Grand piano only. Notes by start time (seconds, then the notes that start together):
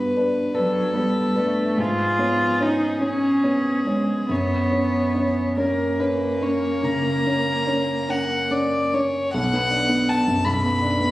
Already playing: G2 B3 B4
0.17 D4 B4
0.54 D4 B4
0.93 B3 B4
1.36 D4 B4
1.77 G#2
2.19 B3 C#5
2.60 C#4 C#5
3.01 C#4 C#5
3.43 B3 C#5
3.86 C#4 C#5
4.29 F#2
4.72 C#4 C#5
5.15 C#4 C#5
5.58 C#4 C#5
5.99 C#4 C#5
6.42 C#4 C#5
6.83 C#3
7.26 C#4 C#5
7.67 C#4 C#5
8.09 C#4 C#5
8.51 C#4 C#5
8.94 C#4 C#5
9.34 B1
9.53 B3
9.70 D4
9.89 B3
10.08 D4
10.27 F#2
10.45 B1
10.64 B3
10.82 D4
11.00 B3